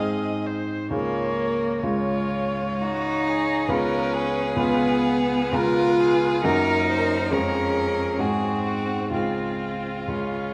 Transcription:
Already playing: G#2 C4 G#4
0.00 D#4 G#4 D#5
0.47 C5
0.90 C#2 A#3 C#4 F4 G#4 C#5
1.83 C#2 G#3 C#4 F4 G#4 C#5
1.88 F4
2.81 D#4 F#4
3.27 G#4
3.68 C#2 B3 C#4 F4 G#4 A#4 B4
4.14 G#4
4.56 C#2 B3 F4 G#4 B4
5.52 C#2 B3 F4 G#4 A#4 B4
6.00 G#4
6.43 F#2 A#3 C#4 D#4 F#4 A#4
6.89 C5
7.31 F2 G#3 C#4 G#4 A#4
8.19 G#2 G#3 C4 F#4 G#4
8.67 F#4
9.10 C#2 G#3 C4 F4 G#4
10.08 C#2 G#3 C#4 F4 G#4

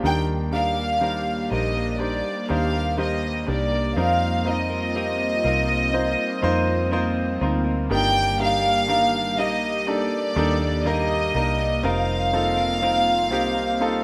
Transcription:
0.03 D#2 D#3 G3 A#3 D4 D#4 G4 A#4 G5
0.51 G3 A#3 D4 D#4 G4 A#4 F5
0.77 A#3 D4 A#4
1.00 D#3 G3 A#3 D4 D#4 G4 A#4 C5
1.50 A#1 G3 A#3 D4 D#4 G4 A#4 C5 D#5
1.75 A#3 D4 A#4
1.99 D4 D#4 G4 C5 D5
2.48 D#2 G3 A#3 D4 D#4 G4 A#4 C5 F5
2.73 A#3 D4 A#4
2.97 D#3 G3 A#3 D#4 G4 A#4 C5 D#5
3.47 C2 G3 A#3 D4 D#4 G4 A#4 D5
3.72 A#3 D4 A#4
3.96 F2 F3 C4 D#4 F4 A#4 F5
4.45 F3 C4 D#4 F4 A#4 D#5
4.70 C4 D#4 A#4
4.94 F3 C4 D#4 F4 G4 A#4
5.43 C2 F3 C4 D#4 F4 A#4
5.68 C4 D#4 A#4
5.93 C4 D#4 F4 C5
6.42 F2 F3 C4 D#4 F4 A#4 C5
6.91 F3 C4 D#4 F4 A#4 C5
7.40 D2 F3 C4 D#4 F4 A#4 C5
7.64 C4 D#4 A#4
7.89 G1 G2 D#3 G3 A#3 D4 D#4 G4 A#4
7.94 G5
8.38 G3 A#3 D4 D#4 G4 A#4
8.43 F5
8.63 G3 A#3 D4 A#4
8.87 G2 D#3 G3 A#3 D4 D#4 G4 A#4
9.37 A#1 G3 A#3 D#4 G4 A#4 D#5
9.87 D4 D#4 G4 A4 D5
10.35 D#2 G3 A#3 D4 D#4 G4 A4 A#4
10.60 G3 A#3 D4 A#4
10.85 G2 D#3 G3 A#3 D#4 G4 A#4 D#5
11.34 C2 G3 A#3 D4 D#4 G4 A#4
11.58 G3 A#3 D4 A#4
11.83 F1 F3 A#3 C4 D#4 F4 A#4 F5
12.32 F3 C4 D#4 F4 A4 A#4
12.57 C4 D#4 A#4
12.81 F3 C4 D#4 F4 A#4
13.30 C2 F3 C4 D#4 F4 G4 A#4
13.55 C4 D#4 A#4
13.80 C4 D#4 F4 A4

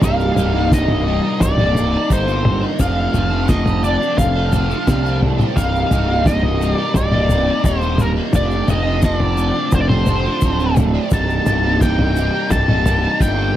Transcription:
0.01 C1 C2 G2 C3 G3 A#3 D#4 F5, kick, floor tom, shaker
0.20 shaker
0.36 C1 C3 G3 A#3 D#4, floor tom, shaker
0.55 C3 G3 A#3 D#4
0.72 C2 G2 C3 G3 A#3 D#4 D#5, kick, snare, shaker
0.88 floor tom
1.06 C3 G3 A#3 D#4
1.23 C3 G3 A#3 D#4
1.40 C1 D5, kick, floor tom, shaker
1.58 C3 G3 A#3 D#4, mid tom
1.75 C3 G3 A#3 D#4, floor tom, shaker
1.92 C3 G3 A#3 D#4
2.09 G1 C2 G2 C3 G3 A#3 D#4 C5, kick, shaker
2.27 C3 G3 A#3 D#4, shaker
2.45 floor tom, mid tom
2.62 C3 G3 A#3 D#4
2.79 F1 F2 C3 F3 A3 C4 D4 F5, kick, floor tom, shaker
3.14 F1 F3 A3 C4 D4, floor tom, shaker
3.31 F3 A3 C4 D4
3.48 F2 C3 F3 A3 C4 D4 D#5, kick, snare, shaker
3.66 floor tom, shaker
3.82 F3 A3 C4 D4 D5, shaker
4.00 F3 A3 C4 D4, shaker
4.18 F1 F5, kick, floor tom, shaker
4.35 F3 A3 C4 D4
4.52 F3 A3 C4 D4, floor tom, shaker
4.69 F3 A3 C4 D4, shaker
4.86 C2 F2 C3 F3 A3 C4 D4, kick, snare, mid tom, shaker
5.03 F3 A3 C4 D4, shaker
5.22 floor tom
5.38 F3 A3 C4 D4, mid tom, shaker
5.56 C1 C2 G2 C3 G3 A#3 D#4 F5, kick, floor tom, shaker
5.76 shaker
5.90 C1 C3 G3 A#3 D#4, floor tom, shaker
6.08 C3 G3 A#3 D#4
6.26 C2 G2 C3 G3 A#3 D#4 D#5, kick, snare, shaker
6.43 floor tom
6.61 C3 G3 A#3 D#4, shaker
6.73 D5
6.79 C3 G3 A#3 D#4
6.94 C1 D5, kick, floor tom, shaker
7.12 C3 G3 A#3 D#4, mid tom
7.29 C3 G3 A#3 D#4, floor tom, shaker
7.47 C3 G3 A#3 D#4
7.64 D#1 C2 G2 C3 G3 A#3 D#4 C5, kick, shaker
7.82 C3 G3 A#3 D#4, shaker
7.98 A#4, floor tom, mid tom, shaker
8.16 C3 G3 A#3 D#4
8.33 F1 F2 C3 F3 A3 C4 D4 D5, kick, floor tom, shaker
8.51 shaker
8.68 F1 F3 A3 C4 D4 D#5, floor tom, shaker
8.85 F3 A3 C4 D4
9.02 F2 C3 F3 A3 C4 D4 D#5, kick, snare, shaker
9.16 D5
9.20 floor tom
9.37 F3 A3 C4 D4, shaker
9.54 F3 A3 C4 D4
9.72 F1 C5, kick, floor tom, shaker
9.81 D5
9.89 F3 A3 C4 D4 C5, mid tom
10.06 F3 A3 C4 D4, floor tom, shaker
10.24 F3 A3 C4 D4
10.41 D1 F2 C3 F3 A3 C4 D4, kick, shaker
10.59 F3 A3 C4 D4, shaker
10.76 floor tom, mid tom, shaker
10.94 F3 A3 C4 D4
11.11 C1 C2 G2 C3 G3 A#3 D#4 A5, kick, floor tom, shaker
11.30 shaker
11.46 C1 C3 G3 A#3 D#4, floor tom, shaker
11.65 C3 G3 A#3 D#4
11.81 C2 G2 C3 G3 A#3 D#4 G5, kick, snare, shaker
11.99 floor tom
12.16 C3 G3 A#3 D#4, shaker
12.34 C3 G3 A#3 D#4
12.50 C1 A5, kick, floor tom, shaker
12.68 C3 G3 A#3 D#4, mid tom
12.86 C3 G3 A#3 D#4, floor tom, shaker
13.03 C3 G3 A#3 D#4
13.21 G1 C2 G2 C3 G3 A#3 D#4 G5, kick, shaker
13.37 C3 G3 A#3 D#4

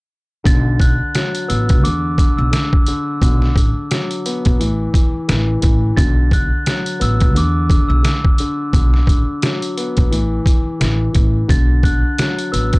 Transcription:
0.44 B1 D3 A6, kick, closed hi-hat
0.80 D3 F#6, kick, closed hi-hat
1.15 F#3, snare, closed hi-hat
1.35 closed hi-hat
1.48 A1 B3 E6, closed hi-hat
1.69 kick, closed hi-hat
1.83 E2 D3 D6, closed hi-hat
2.18 D3, kick, closed hi-hat
2.37 B1 E6
2.51 D3, snare, closed hi-hat
2.73 kick
2.87 D3, closed hi-hat
3.22 B1 D3, kick, closed hi-hat
3.42 snare
3.56 A1 D3, kick, closed hi-hat
3.91 F#3, snare, closed hi-hat
4.11 closed hi-hat
4.26 B3, closed hi-hat
4.45 B1, kick, closed hi-hat
4.59 A1 E3, closed hi-hat
4.94 E3, kick, closed hi-hat
5.28 A1 E3, snare, closed hi-hat
5.61 A1 E3, kick, closed hi-hat
5.97 B1 D3 A6, kick, closed hi-hat
6.31 D3 F#6, kick, closed hi-hat
6.66 F#3, snare, closed hi-hat
6.86 closed hi-hat
7.00 A1 B3 E6, closed hi-hat
7.21 kick, closed hi-hat
7.35 E2 D3 D6, closed hi-hat
7.70 D3, kick, closed hi-hat
7.89 B1 E6
8.03 D3, snare, closed hi-hat
8.25 kick
8.38 D3, closed hi-hat
8.73 B1 D3, kick, closed hi-hat
8.94 snare
9.07 A1 D3, kick, closed hi-hat
9.42 F#3, snare, closed hi-hat
9.62 closed hi-hat
9.77 B3, closed hi-hat
9.97 B1, kick, closed hi-hat
10.11 A1 E3, closed hi-hat
10.46 E3, kick, closed hi-hat
10.80 A1 E3, snare, closed hi-hat
11.13 A1 E3, kick, closed hi-hat
11.48 B1 D3 A6, kick, closed hi-hat
11.83 D3 F#6, kick, closed hi-hat
12.18 F#3, snare, closed hi-hat
12.39 closed hi-hat
12.52 A1 B3 E6, closed hi-hat
12.73 kick, closed hi-hat

